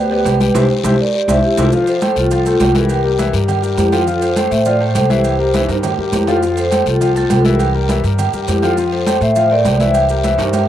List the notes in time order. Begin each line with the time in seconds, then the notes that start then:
Already playing: D2 G4 C5
0.11 B3 G4 B4 D5, high conga, low agogo
0.25 C2, high conga, low timbale, low agogo, short guiro, maracas
0.40 G3 G4 B4 G5, high conga, short guiro, maracas
0.54 C2 E4 G4 C5, high conga, high timbale, long guiro, maracas
0.84 C2 E4 G4 C5, high conga, high timbale, long guiro, maracas
1.00 A#4 D5
1.15 G4 D5
1.28 C2 E4 G4 C5 E5, high conga, high timbale, long guiro, maracas
1.44 E4 G4
1.57 C2 E4 F4 G4 A4 C5, high conga, high timbale, long guiro, maracas
1.72 F3 F4 F5, high conga, long guiro, maracas
1.87 A4 C5, low agogo, maracas
2.01 A3 A4 C5, high conga, low timbale, low agogo, short guiro, maracas
2.16 C2 F4 A4, short guiro, maracas
2.31 F3 F4 A4 F5, high conga, low agogo, long guiro, maracas
2.46 A3 F4 A4 C5, high conga, low agogo, maracas
2.60 C2, high conga, low timbale, low agogo, short guiro, maracas
2.75 E3 E4 G4 A#4 E5, high conga, short guiro, maracas
2.89 high conga, low agogo, long guiro, maracas
3.04 G3 G4 A#4, high conga
3.18 E3 E4 E5, high conga, low timbale, low agogo, short guiro, maracas
3.33 G2 G3 G4 A#4, short guiro, maracas
3.48 high conga, low conga, low agogo, long guiro, maracas
3.62 G3 G4 A#4, high conga, maracas
3.77 F2 E4 G4, high conga, low timbale, low agogo, short guiro, maracas
3.92 F3 F4 A4 F5, low agogo, short guiro, maracas
4.07 F3 F4 F5, long guiro, maracas
4.22 A4 C5, high conga, low agogo, maracas
4.36 A3 A4 C5, high conga, low timbale, low agogo, short guiro, maracas
4.51 A2 C5 E5, short guiro, maracas
4.65 F3 F4 A4 D5 F5, high conga, low agogo, long guiro, maracas
4.80 A3 A4 C5, high conga, low agogo
4.95 C2, high conga, low timbale, low agogo, short guiro, maracas
5.10 E3 E4 G4 C5 E5, high conga, short guiro, maracas
5.24 high conga, low agogo, long guiro, maracas
5.39 G3 G4 A#4, high conga
5.54 E3 E4 E5, high conga, high timbale, low agogo, short guiro, maracas
5.68 G2 G3 G4 A#4, high timbale, short guiro, maracas
5.83 high conga, low conga, low timbale, low agogo, long guiro, maracas
5.98 G2 G3 G4 A#4, high conga
6.12 F2 E4 G4, high conga, low timbale, low agogo, short guiro, maracas
6.27 F3 F4 A4 F5, low timbale, low agogo, short guiro, maracas
6.42 F3 F4 F5, high conga, long guiro, maracas
6.57 A4 C5, high conga, low agogo, maracas
6.71 A3 A4 C5, high conga, low timbale, low agogo, short guiro, maracas
6.86 C2 F4 A4, short guiro, maracas
7.01 F3 F4 F5, high conga, low agogo, long guiro, maracas
7.15 A3 F4 A4 C5, high conga, low agogo, maracas
7.30 C2, high conga, low timbale, low agogo, short guiro, maracas
7.45 E3 E4 G4 A#4 E5, high conga, short guiro, maracas
7.59 high conga, low agogo, long guiro, maracas
7.75 G3 G4 A#4, high conga
7.89 E3 E4 E5, high conga, low timbale, low agogo, short guiro, maracas
8.04 G2 G3 G4 A#4, short guiro, maracas
8.18 high conga, low conga, low agogo, long guiro, maracas
8.33 G2 G3 G4 A#4, high conga, maracas
8.48 F2 E4 G4, high conga, low timbale, low agogo, short guiro, maracas
8.62 F3 F4 A4 F5, high conga, low agogo, short guiro, maracas
8.77 F3 F4 F5, high conga, long guiro, maracas
8.92 A4 C5, high conga, low agogo
9.07 A3 A4 C5, high conga, low timbale, low agogo, short guiro, maracas
9.21 A2 C5 E5, short guiro, maracas
9.36 F3 F4 F5, high conga, low agogo, long guiro, maracas
9.51 A3 A4 A#4 C5 D5, high conga, low agogo
9.65 C2, high conga, low timbale, low agogo, short guiro, maracas
9.80 E3 E4 C5 E5, high conga, short guiro, maracas
9.94 high conga, low agogo, long guiro, maracas
10.09 G3 G4 A#4, maracas
10.24 E3 E4 E5, high conga, low timbale, low agogo, short guiro, maracas
10.38 G2 G3 G4 A#4, high timbale, short guiro, maracas
10.53 high conga, low timbale, low agogo, long guiro, maracas